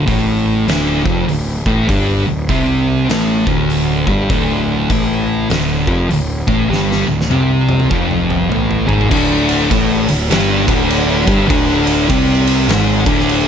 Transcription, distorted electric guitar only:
0.06 0.66 A2 loud
0.06 0.67 A3 loud
0.68 1.04 D2 loud
0.68 1.05 D3 loud
1.05 1.27 F2 medium
1.05 1.27 F3 medium
1.29 1.58 D2 medium
1.66 1.88 A2 medium
1.66 1.88 A3 medium
1.88 2.25 G2 loud
1.88 2.25 G3 loud
2.27 2.45 D2 medium
2.49 3.09 C3 loud
2.49 3.09 C4 loud
3.10 3.46 A2 loud
3.10 3.46 A3 loud
3.47 4.06 D2 medium
3.47 4.06 D3 loud
4.07 4.29 G2 medium
4.07 4.30 G3 loud
4.31 4.90 D2 loud
4.31 4.90 D3 loud
4.91 5.50 A2 medium
4.91 5.50 A3 loud
5.50 5.86 D2 loud
5.50 5.86 D3 loud
5.88 6.09 F2 medium
5.88 6.10 F3 loud
6.10 6.40 D2 medium
6.47 6.69 A2 medium
6.47 6.70 A3 loud
6.69 7.06 G2 medium
6.69 7.07 G3 loud
7.07 7.26 D2 medium
7.30 7.90 C3 loud
7.30 7.90 C4 loud
7.90 8.49 F2 medium
7.90 8.50 F3 loud
8.50 8.86 A2 medium
8.50 8.87 A3 medium
8.87 9.09 G#2 medium
8.87 9.10 G#3 medium
9.10 9.69 D2 loud
9.10 9.70 D3 loud
9.70 10.06 A2 loud
9.70 10.07 A3 loud
10.07 10.25 D2 medium
10.30 10.66 G2 loud
10.30 10.66 G3 loud
10.67 11.26 D2 medium
10.67 11.26 D3 loud
11.26 11.48 G2 medium
11.26 11.49 G3 medium
11.48 12.08 D2 loud
11.48 12.08 D3 loud
12.10 12.68 C3 loud
12.10 12.69 C4 loud
12.69 13.05 G#2 loud
12.69 13.05 G#3 loud
13.06 13.48 D2 medium
13.06 13.48 D3 loud

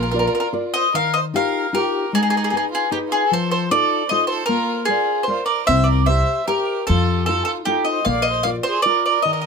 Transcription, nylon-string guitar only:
0.00 0.13 A#3 medium
0.14 0.46 F4 soft
0.14 0.46 A#4 soft
0.14 0.46 D5 medium
0.53 0.85 F4 soft
0.53 0.86 A#4 soft
0.53 0.86 D5 medium
0.94 1.33 D#3 soft
1.34 1.66 D#4 soft
1.34 1.66 F4 soft
1.34 1.66 G4 medium
1.73 2.05 D#4 medium
1.73 2.06 F4 soft
1.73 2.06 G4 medium
2.13 2.52 G#3 medium
2.52 2.84 D#4 soft
2.52 2.85 G#4 soft
2.52 2.85 B4 medium
2.92 3.23 D#4 medium
2.92 3.24 G#4 soft
2.92 3.24 B4 medium
3.31 3.70 F3 medium
3.71 4.03 D#4 soft
3.71 4.02 F4 soft
3.71 4.03 A4 medium
4.11 4.42 D#4 medium
4.11 4.42 F4 medium
4.11 4.43 A4 medium
4.49 4.88 A#3 medium
4.88 5.20 A#4 soft
4.88 5.21 C5 soft
4.88 5.21 D5 soft
5.28 5.60 A#4 medium
5.28 5.61 C5 soft
5.28 5.61 D5 medium
5.69 6.08 C4 medium
6.08 6.41 G4 soft
6.08 6.41 C5 soft
6.08 6.41 E5 soft
6.48 6.80 G4 soft
6.48 6.81 C5 soft
6.48 6.81 E5 medium
6.89 7.28 F3 medium
7.29 7.60 D#4 soft
7.29 7.60 F4 soft
7.29 7.61 A4 medium
7.67 7.99 D#4 medium
7.67 7.99 F4 soft
7.67 7.99 A4 medium
8.06 8.45 A#3 medium
8.45 8.77 F4 soft
8.45 8.78 A#4 soft
8.45 8.78 D5 medium
8.86 9.18 F4 medium
8.86 9.18 A#4 soft
8.86 9.18 D5 medium
9.25 9.46 D#3 medium

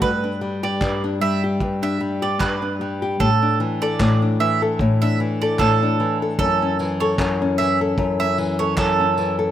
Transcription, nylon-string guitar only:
0.00 0.81 G2 medium
0.00 0.11 A3 medium
0.00 0.11 E4 medium
0.00 0.10 F#4 medium
0.24 1.03 D4 medium
0.41 1.20 G3 medium
0.63 1.42 G4 medium
0.82 1.60 G2 medium
1.04 1.82 D4 medium
1.22 1.99 G3 medium
1.44 2.21 G4 medium
1.61 2.39 G2 medium
1.82 2.62 D4 medium
2.01 2.80 G3 medium
2.22 3.01 G4 medium
2.40 3.19 G2 medium
2.62 3.42 D4 medium
2.81 3.29 G3 medium
3.02 3.29 G4 medium
3.20 3.99 A2 medium
3.42 4.21 D4 medium
3.60 4.40 E3 medium
3.82 4.62 A4 medium
4.00 4.79 A2 medium
4.22 5.02 D4 medium
4.40 5.20 E3 medium
4.62 5.42 A4 medium
4.81 5.59 A2 medium
5.03 5.82 D4 medium
5.20 5.99 E3 medium
5.43 6.22 A4 medium
5.60 6.39 A2 medium
5.83 6.48 D4 soft
6.00 6.79 E3 medium
6.22 7.01 A4 medium
6.40 7.18 F#2 medium
6.62 7.41 C#4 medium
6.80 7.59 E3 medium
7.02 7.81 A4 medium
7.19 7.97 F#2 medium
7.42 8.20 C#4 medium
7.60 8.38 E3 medium
7.81 8.60 A4 medium
7.98 8.77 F#2 medium
8.21 8.99 C#4 medium
8.38 9.17 E3 medium
8.60 9.38 A4 medium
8.78 9.51 F#2 medium
9.00 9.51 C#4 medium
9.18 9.51 E3 medium
9.39 9.51 A4 medium

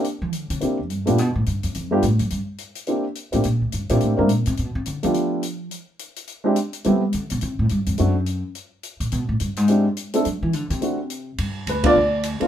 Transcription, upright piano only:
0.61 0.76 A#3 soft
0.61 0.77 C4 soft
0.61 0.77 D4 soft
0.61 0.77 E4 soft
0.61 0.77 G4 medium
1.06 1.16 A3 medium
1.06 1.17 B3 medium
1.06 1.17 D4 medium
1.06 1.17 F4 medium
1.06 1.17 G4 medium
1.91 2.02 A3 medium
1.91 2.02 B3 medium
1.91 2.02 D4 medium
1.91 2.02 F4 medium
1.91 2.02 G4 medium
2.87 3.03 A#3 medium
2.87 3.03 C4 soft
2.87 3.04 D4 soft
2.87 3.03 E4 soft
2.87 3.04 G4 medium
3.32 3.43 A#3 medium
3.32 3.43 C4 soft
3.32 3.43 D4 medium
3.32 3.44 E4 soft
3.32 3.44 G4 medium
3.90 4.16 A#3 medium
3.90 4.16 C4 medium
3.90 4.17 D4 medium
3.90 4.17 E4 medium
3.90 4.17 G4 medium
4.17 4.28 A#3 medium
4.17 4.28 C4 medium
4.17 4.29 D4 medium
4.17 4.29 E4 medium
4.17 4.29 A#4 medium
5.03 5.41 A3 medium
5.03 5.41 B3 soft
5.03 5.41 D4 medium
5.03 5.41 F4 medium
5.03 5.41 G4 medium
6.44 6.55 G#3 medium
6.44 6.55 C4 medium
6.44 6.55 D4 medium
6.44 6.56 E4 medium
6.44 6.56 G4 medium
6.85 7.00 A3 medium
6.85 7.00 B3 medium
6.85 7.00 C4 medium
6.85 7.01 E4 medium
6.85 7.01 G4 medium
7.98 8.14 A3 medium
7.98 8.14 C4 soft
7.98 8.14 D4 soft
7.98 8.14 E4 soft
7.98 8.14 F#4 medium
9.68 9.84 G#3 medium
9.68 9.84 C4 soft
9.68 9.84 D4 medium
9.68 9.84 E4 medium
9.68 9.84 G4 medium
10.14 10.24 A3 medium
10.14 10.24 C4 medium
10.14 10.24 D4 medium
10.14 10.25 E4 medium
10.14 10.25 A4 medium
10.81 10.97 A3 soft
10.81 10.97 C4 soft
10.81 10.97 D4 soft
10.81 10.98 E4 soft
10.81 10.98 F#4 medium
11.69 11.85 B4 medium
11.83 11.94 A3 medium
11.83 11.94 B3 medium
11.83 11.95 D4 medium
11.83 11.95 F4 medium
11.83 12.22 D5 loud
12.40 12.47 A3 medium
12.40 12.47 B3 medium
12.40 12.47 D4 medium
12.40 12.47 F4 medium

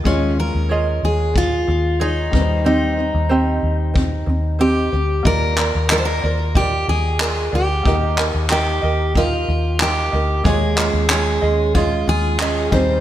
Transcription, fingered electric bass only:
0.05 0.50 D#2 loud
0.55 0.99 D#2 medium
1.03 1.64 D#2 medium
1.68 2.29 D#2 loud
2.33 3.10 D#2 medium
3.14 3.59 D#2 medium
3.63 4.24 D#2 medium
4.27 4.88 D#2 medium
4.93 5.23 D2 medium
5.25 5.70 D#2 medium
5.75 6.19 D#2 medium
6.24 6.84 D#2 medium
6.88 7.49 D#2 medium
7.53 7.83 D2 medium
7.85 8.30 D#2 medium
8.34 8.79 D#2 medium
8.83 9.44 D#2 medium
9.48 10.09 D#2 medium
10.13 10.43 D2 medium
10.45 10.90 D#2 loud
10.93 11.39 D#2 loud
11.42 12.03 D#2 medium
12.07 12.69 D#2 loud
12.72 13.00 D#2 loud

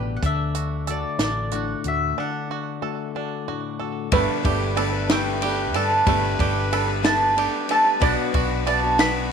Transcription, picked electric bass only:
0.00 0.17 A1 medium
0.23 1.03 D2 medium
1.19 1.73 A1 medium
1.84 2.12 D2 medium
4.12 4.26 G1 loud
4.44 5.74 G1 medium
5.74 6.01 G2 medium
6.07 6.34 G1 loud
6.39 7.46 G1 medium
8.01 8.15 B1 loud
8.34 9.32 B1 loud

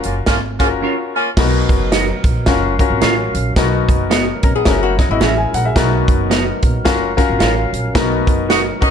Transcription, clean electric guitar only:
0.82 0.94 C#4 medium
0.82 0.94 F4 medium
0.82 0.95 A#4 medium
0.82 0.95 C#5 medium
1.92 2.04 D#4 medium
1.92 2.04 F#4 loud
1.92 2.04 A#4 medium
1.92 2.05 D#5 loud
3.01 3.13 C#4 medium
3.01 3.13 F4 medium
3.01 3.14 A#4 medium
3.01 3.14 C#5 medium
4.10 4.22 B3 medium
4.10 4.23 F#4 medium
4.10 4.23 A#4 medium
4.10 4.23 D#5 loud
5.20 5.32 C#4 medium
5.20 5.33 F#4 medium
5.20 5.33 A#4 loud
5.20 5.33 E5 loud
6.30 6.42 B3 medium
6.30 6.42 F#4 medium
6.30 6.43 A#4 loud
6.30 6.43 D#5 medium
7.39 7.52 F4 medium
7.39 7.52 A#4 medium
7.39 7.52 C#5 medium
7.39 7.53 F5 medium
8.49 8.61 D#4 medium
8.49 8.62 F#4 medium
8.49 8.62 A#4 loud
8.49 8.62 D#5 loud

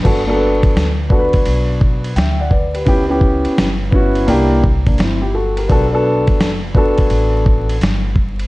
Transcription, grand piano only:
0.03 0.19 B3 medium
0.03 0.19 D4 medium
0.03 0.20 F#4 medium
0.03 0.21 A4 medium
0.26 0.31 A#3 medium
0.26 0.83 D4 medium
0.26 0.84 F#4 medium
0.26 0.84 A4 medium
0.32 0.86 B3 medium
1.09 2.08 B3 medium
1.09 2.08 D4 medium
1.09 2.09 F#4 medium
1.09 1.20 A4 medium
1.19 2.13 B4 medium
2.16 2.38 E5 medium
2.16 2.38 G5 medium
2.39 2.50 D5 medium
2.39 2.51 F#5 medium
2.51 2.72 B4 medium
2.51 2.73 D5 medium
2.74 2.87 G4 medium
2.74 3.08 B4 medium
2.85 3.01 B3 medium
2.85 3.02 C#4 medium
2.85 3.02 E4 medium
2.85 3.03 G4 loud
3.07 3.64 B3 medium
3.07 3.65 C#4 medium
3.07 3.66 E4 medium
3.07 3.66 G4 medium
3.91 4.27 B3 medium
3.91 4.28 C#4 medium
3.91 4.27 E4 medium
3.91 4.29 F#4 medium
4.26 4.63 A#3 loud
4.26 4.63 D4 medium
4.26 4.64 E4 medium
4.26 4.64 G4 medium
4.87 4.99 A#3 medium
4.87 4.98 D4 medium
4.99 5.21 C4 medium
4.99 5.21 E4 medium
5.22 5.34 E4 medium
5.22 5.34 G4 medium
5.34 5.56 F#4 medium
5.34 5.56 A4 medium
5.57 5.91 G4 medium
5.57 5.91 A#4 medium
5.68 5.84 B3 medium
5.68 5.84 D4 medium
5.68 5.85 F#4 medium
5.68 5.86 A4 loud
5.91 6.47 B3 medium
5.91 6.48 D4 medium
5.91 6.49 F#4 medium
5.91 6.49 A4 loud
6.74 7.73 B3 medium
6.74 7.73 D4 medium
6.74 7.74 F#4 medium
6.74 7.74 A4 loud

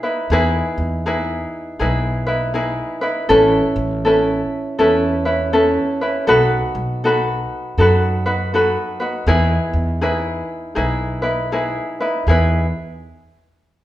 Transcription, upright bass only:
0.30 0.61 E2 loud
0.78 1.44 E2 medium
1.80 2.77 B1 medium
3.30 3.60 A1 loud
3.76 4.42 A1 loud
4.79 5.76 E2 loud
6.28 6.58 B1 loud
6.75 7.42 B1 medium
7.78 8.75 F#2 medium
9.27 9.57 E2 loud
9.73 10.41 E2 medium
10.77 11.74 B1 medium
12.27 12.71 E2 loud

